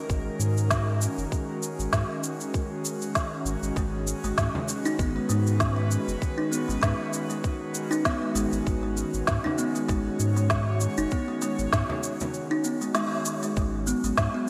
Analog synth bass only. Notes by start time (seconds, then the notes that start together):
0.10 G#1
0.40 G#2
1.18 F#1
1.79 G#1
1.93 G#2
3.45 G#1
3.63 G#1
3.77 G#1
4.24 G#1
4.38 G#2
4.99 G#1
5.30 G#2
6.08 F#1
6.69 G#1
6.83 G#2
8.35 G#1
8.53 G#1
8.67 G#1
9.14 G#1
9.28 G#2
9.89 G#1
10.20 G#2
10.98 F#1
11.59 G#1
11.73 G#2
13.57 G#1
14.04 G#1
14.18 G#2